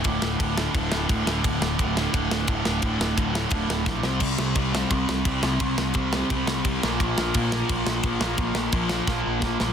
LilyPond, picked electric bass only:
\new Staff \with { instrumentName = "Picked electric bass" } { \clef bass \time 4/4 \key d \minor \tempo 4 = 173 d,,8 d,,8 d,,4 d,,8 d,,8 d,,8 d,,8 | d,,8 d,,8 d,,4 d,,8 d,,8 d,,8 d,,8 | r8 d,,8 d,,4 d,,8 d,,8 bes,,8 c,8 | c,8 c,8 c,4 c,8 c,8 c,8 c,8 |
c,8 c,8 c,4 c,8 c,8 c,8 bes,,8 | bes,,8 bes,,8 bes,,4 bes,,8 bes,,8 bes,,8 bes,,8 | bes,,8 bes,,8 bes,,4 bes,,8 bes,,8 bes,,8 bes,,8 | }